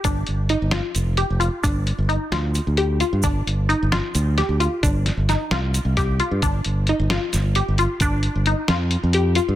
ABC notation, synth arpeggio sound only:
X:1
M:7/8
L:1/8
Q:1/4=132
K:Fmix
V:1 name="Synth arpeggio sound"
D2 E F2 G F | D2 E F2 G F | D2 E F2 G F | D2 E F2 G F |
D2 E F2 G F | D2 E F2 G F |]